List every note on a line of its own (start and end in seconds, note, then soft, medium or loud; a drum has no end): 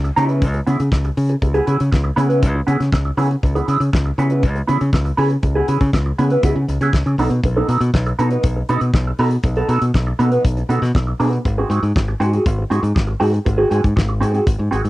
0.04 muted clean electric guitar stroke soft
0.04 closed hi-hat soft
0.17 0.44 C#3 loud
0.17 0.29 B3 loud
0.17 0.29 E4 loud
0.17 0.29 G#4 loud
0.17 closed hi-hat medium
0.29 0.40 B3 soft
0.29 0.40 E4 soft
0.29 0.40 B4 medium
0.29 closed hi-hat soft
0.42 0.60 C#2 loud
0.42 kick loud
0.42 closed hi-hat loud
0.54 muted clean electric guitar stroke soft
0.54 closed hi-hat soft
0.67 0.76 C#3 medium
0.67 0.80 B3 medium
0.67 0.79 E4 medium
0.67 0.79 G#4 medium
0.67 closed hi-hat medium
0.80 0.89 C#3 medium
0.80 muted clean electric guitar stroke soft
0.80 closed hi-hat medium
0.92 1.09 C#2 loud
0.92 muted clean electric guitar stroke soft
0.92 kick loud
0.92 snare loud
1.05 muted clean electric guitar stroke medium
1.05 closed hi-hat soft
1.17 1.35 C#3 loud
1.17 open hi-hat medium
1.29 muted clean electric guitar stroke soft
1.29 closed hi-hat soft
1.42 1.60 C#2 loud
1.42 muted clean electric guitar stroke soft
1.42 kick loud
1.42 closed hi-hat medium
1.54 1.65 B3 medium
1.54 1.66 E4 medium
1.54 1.67 G#4 medium
1.54 closed hi-hat soft
1.66 1.76 C#3 medium
1.66 1.77 B3 medium
1.66 1.77 E4 medium
1.66 1.78 G#4 medium
1.66 closed hi-hat medium
1.79 1.89 C#3 medium
1.79 muted clean electric guitar stroke soft
1.79 closed hi-hat medium
1.92 2.10 C#2 loud
1.92 muted clean electric guitar stroke soft
1.92 kick loud
1.92 snare loud
2.04 muted clean electric guitar stroke medium
2.16 2.44 C#3 loud
2.16 2.29 B3 medium
2.16 2.28 E4 loud
2.16 2.28 G#4 loud
2.16 closed hi-hat medium
2.29 2.40 B3 medium
2.29 2.40 E4 medium
2.29 2.40 B4 medium
2.29 closed hi-hat soft
2.43 2.60 C#2 loud
2.43 kick loud
2.43 closed hi-hat medium
2.54 muted clean electric guitar stroke soft
2.67 2.76 C#3 loud
2.67 2.80 B3 medium
2.67 2.80 E4 medium
2.67 2.79 G#4 medium
2.67 closed hi-hat medium
2.80 2.89 C#3 medium
2.80 muted clean electric guitar stroke soft
2.80 snare soft
2.80 closed hi-hat soft
2.92 3.10 C#2 loud
2.92 muted clean electric guitar stroke soft
2.92 kick loud
2.92 snare loud
3.05 muted clean electric guitar stroke soft
3.17 3.35 C#3 loud
3.17 3.31 B3 loud
3.17 3.30 E4 medium
3.17 3.29 G#4 loud
3.17 open hi-hat medium
3.31 closed hi-hat medium
3.43 3.60 C#2 loud
3.43 muted clean electric guitar stroke soft
3.43 kick loud
3.43 closed hi-hat medium
3.55 3.66 B3 medium
3.55 3.67 E4 medium
3.55 3.68 G#4 loud
3.55 closed hi-hat soft
3.68 3.77 C#3 medium
3.68 3.78 B3 medium
3.68 3.78 E4 medium
3.68 3.79 G#4 medium
3.68 closed hi-hat medium
3.80 3.89 C#3 medium
3.80 muted clean electric guitar stroke medium
3.80 closed hi-hat medium
3.93 4.11 C#2 loud
3.93 muted clean electric guitar stroke soft
3.93 kick loud
3.93 snare loud
4.06 muted clean electric guitar stroke soft
4.18 4.45 C#3 loud
4.18 4.31 B3 medium
4.18 4.31 E4 medium
4.18 4.30 G#4 loud
4.18 closed hi-hat medium
4.30 4.41 B3 medium
4.30 4.41 E4 medium
4.30 4.41 B4 medium
4.30 closed hi-hat soft
4.43 4.61 C#2 loud
4.43 kick loud
4.43 closed hi-hat loud
4.55 muted clean electric guitar stroke soft
4.55 closed hi-hat soft
4.67 4.77 C#3 medium
4.67 4.81 B3 medium
4.67 4.80 E4 medium
4.67 4.79 G#4 medium
4.67 closed hi-hat medium
4.81 4.90 C#3 medium
4.81 muted clean electric guitar stroke soft
4.81 closed hi-hat soft
4.93 5.10 C#2 loud
4.93 muted clean electric guitar stroke soft
4.93 kick loud
4.93 snare loud
5.05 muted clean electric guitar stroke soft
5.05 closed hi-hat soft
5.17 5.35 C#3 medium
5.17 5.31 B3 medium
5.17 5.30 E4 loud
5.17 5.29 G#4 loud
5.17 open hi-hat medium
5.30 muted clean electric guitar stroke medium
5.30 closed hi-hat soft
5.43 5.61 C#2 loud
5.43 muted clean electric guitar stroke soft
5.43 kick loud
5.43 closed hi-hat medium
5.55 5.67 B3 medium
5.55 5.68 E4 medium
5.55 5.68 G#4 medium
5.68 5.77 C#3 medium
5.68 5.78 B3 medium
5.68 5.79 E4 medium
5.68 5.79 G#4 medium
5.68 closed hi-hat medium
5.81 5.89 C#3 loud
5.81 muted clean electric guitar stroke soft
5.81 kick medium
5.81 closed hi-hat medium
5.93 6.11 C#2 loud
5.93 muted clean electric guitar stroke soft
5.93 kick loud
5.93 snare loud
6.06 muted clean electric guitar stroke soft
6.19 6.36 C#3 medium
6.19 6.31 B3 medium
6.19 6.31 E4 loud
6.19 6.31 G#4 loud
6.19 closed hi-hat medium
6.30 6.42 B3 soft
6.30 6.42 E4 medium
6.30 6.41 B4 medium
6.30 closed hi-hat soft
6.43 6.52 C#2 loud
6.43 6.56 B3 medium
6.43 6.56 E4 medium
6.43 6.56 G#4 medium
6.43 kick loud
6.43 closed hi-hat loud
6.56 6.64 C#3 medium
6.56 muted clean electric guitar stroke soft
6.68 6.77 C#2 loud
6.68 muted clean electric guitar stroke soft
6.68 closed hi-hat medium
6.81 6.89 C#3 loud
6.81 6.92 B3 medium
6.81 6.92 E4 medium
6.81 6.92 G#4 medium
6.81 closed hi-hat medium
6.93 7.02 C#2 loud
6.93 muted clean electric guitar stroke soft
6.93 kick loud
6.93 snare loud
7.06 7.15 C#3 medium
7.06 muted clean electric guitar stroke soft
7.06 closed hi-hat soft
7.18 7.27 B1 loud
7.18 7.32 B3 loud
7.18 7.31 D#4 loud
7.18 7.30 A4 loud
7.18 open hi-hat medium
7.30 7.39 B2 loud
7.30 muted clean electric guitar stroke soft
7.30 closed hi-hat medium
7.43 7.61 B1 loud
7.43 muted clean electric guitar stroke soft
7.43 kick loud
7.43 closed hi-hat medium
7.56 7.67 B3 medium
7.56 7.68 D#4 medium
7.56 7.69 A4 medium
7.68 7.77 B2 medium
7.68 7.79 B3 medium
7.68 7.79 D#4 medium
7.68 7.79 A4 medium
7.68 closed hi-hat medium
7.80 7.89 B2 medium
7.80 muted clean electric guitar stroke soft
7.80 closed hi-hat medium
7.93 8.11 B1 loud
7.93 muted clean electric guitar stroke soft
7.93 kick loud
7.93 snare loud
8.06 muted clean electric guitar stroke medium
8.06 closed hi-hat soft
8.18 8.36 B2 medium
8.18 8.31 B3 medium
8.18 8.31 D#4 medium
8.18 8.31 A4 medium
8.18 closed hi-hat medium
8.30 8.42 B3 soft
8.30 8.42 D#4 medium
8.30 8.41 B4 medium
8.30 closed hi-hat soft
8.43 8.61 B1 loud
8.43 kick loud
8.43 closed hi-hat loud
8.56 muted clean electric guitar stroke medium
8.69 8.78 B2 medium
8.69 8.82 B3 medium
8.69 8.81 D#4 loud
8.69 8.81 A4 loud
8.69 closed hi-hat medium
8.81 8.90 B2 medium
8.81 muted clean electric guitar stroke soft
8.81 closed hi-hat soft
8.93 9.11 B1 loud
8.93 muted clean electric guitar stroke soft
8.93 kick loud
8.93 snare loud
9.07 muted clean electric guitar stroke soft
9.19 9.36 B2 loud
9.19 9.32 B3 medium
9.19 9.31 D#4 loud
9.19 9.31 A4 loud
9.19 open hi-hat medium
9.31 closed hi-hat medium
9.43 9.61 B1 loud
9.43 muted clean electric guitar stroke soft
9.43 kick loud
9.43 closed hi-hat medium
9.56 9.68 B3 medium
9.56 9.68 D#4 medium
9.56 9.69 A4 medium
9.56 closed hi-hat soft
9.69 9.78 B2 loud
9.69 9.79 B3 medium
9.69 9.80 D#4 medium
9.69 9.80 A4 medium
9.69 closed hi-hat medium
9.82 9.90 B2 loud
9.82 muted clean electric guitar stroke medium
9.82 closed hi-hat medium
9.94 10.12 B1 loud
9.94 muted clean electric guitar stroke soft
9.94 kick loud
9.94 snare loud
10.07 muted clean electric guitar stroke medium
10.19 10.37 B2 medium
10.19 10.32 B3 medium
10.19 10.31 D#4 medium
10.19 10.31 A4 medium
10.19 closed hi-hat medium
10.32 10.43 B3 medium
10.32 10.42 D#4 medium
10.32 10.42 B4 medium
10.32 closed hi-hat soft
10.45 10.62 B1 loud
10.45 kick loud
10.45 closed hi-hat loud
10.57 muted clean electric guitar stroke soft
10.57 closed hi-hat soft
10.69 10.78 B2 medium
10.69 10.82 B3 medium
10.69 10.82 D#4 medium
10.69 10.81 A4 medium
10.69 closed hi-hat medium
10.82 10.91 B2 loud
10.82 muted clean electric guitar stroke soft
10.82 snare soft
10.82 closed hi-hat soft
10.95 11.12 B1 loud
10.95 muted clean electric guitar stroke soft
10.95 kick loud
10.95 snare loud
11.07 muted clean electric guitar stroke soft
11.20 11.37 B2 loud
11.20 11.40 B3 medium
11.20 11.32 D#4 medium
11.20 11.31 A4 loud
11.20 open hi-hat medium
11.33 muted clean electric guitar stroke medium
11.33 closed hi-hat medium
11.45 11.62 G#1 loud
11.45 muted clean electric guitar stroke soft
11.45 kick loud
11.45 closed hi-hat medium
11.58 11.69 C4 medium
11.58 11.70 F#4 medium
11.58 11.70 G#4 medium
11.70 11.78 G#2 loud
11.70 11.80 C4 medium
11.70 11.81 F#4 medium
11.70 11.81 G#4 medium
11.70 closed hi-hat medium
11.82 11.91 G#2 loud
11.82 closed hi-hat medium
11.96 12.13 G#1 loud
11.96 muted clean electric guitar stroke soft
11.96 kick loud
11.96 snare loud
12.08 muted clean electric guitar stroke soft
12.20 12.38 G#2 loud
12.20 12.33 C4 medium
12.20 12.32 F#4 loud
12.20 12.32 G#4 medium
12.20 closed hi-hat medium
12.33 12.44 C4 medium
12.33 12.43 F#4 medium
12.33 12.43 G#4 medium
12.33 closed hi-hat soft
12.46 12.63 G#1 loud
12.46 kick loud
12.46 closed hi-hat medium
12.58 muted clean electric guitar stroke medium
12.70 12.79 G#2 medium
12.70 12.83 C4 medium
12.70 12.82 F#4 medium
12.70 12.81 G#4 loud
12.70 closed hi-hat medium
12.83 12.91 G#2 loud
12.83 muted clean electric guitar stroke soft
12.83 closed hi-hat soft
12.95 13.13 G#1 medium
12.95 muted clean electric guitar stroke soft
12.95 kick loud
12.95 snare loud
13.07 muted clean electric guitar stroke medium
13.20 13.38 G#2 loud
13.20 13.33 C4 medium
13.20 13.33 F#4 medium
13.20 13.32 G#4 loud
13.20 open hi-hat medium
13.33 muted clean electric guitar stroke soft
13.33 closed hi-hat soft
13.45 13.64 G#1 loud
13.45 muted clean electric guitar stroke soft
13.45 kick loud
13.45 closed hi-hat medium
13.58 13.69 C4 medium
13.58 13.70 F#4 medium
13.58 13.70 G#4 medium
13.70 13.80 G#2 loud
13.70 13.81 C4 medium
13.70 13.81 F#4 medium
13.70 13.81 G#4 medium
13.70 closed hi-hat medium
13.83 13.93 G#2 medium
13.83 muted clean electric guitar stroke soft
13.83 kick loud
13.83 closed hi-hat medium
13.96 14.23 G#1 loud
13.96 muted clean electric guitar stroke soft
13.96 kick loud
13.96 snare loud
14.08 muted clean electric guitar stroke soft
14.20 14.39 G#2 loud
14.20 14.34 C4 medium
14.20 14.33 F#4 medium
14.20 14.32 G#4 loud
14.20 closed hi-hat medium
14.34 14.44 C4 medium
14.34 14.44 F#4 medium
14.34 14.44 G#4 medium
14.34 closed hi-hat soft
14.47 14.56 G#1 loud
14.47 kick loud
14.47 closed hi-hat loud
14.59 14.68 G#2 medium
14.59 muted clean electric guitar stroke soft
14.71 14.81 G#1 medium
14.71 14.84 C4 medium
14.71 14.83 F#4 medium
14.71 14.82 G#4 medium
14.71 closed hi-hat medium
14.84 14.90 G#2 medium
14.84 muted clean electric guitar stroke soft
14.84 closed hi-hat medium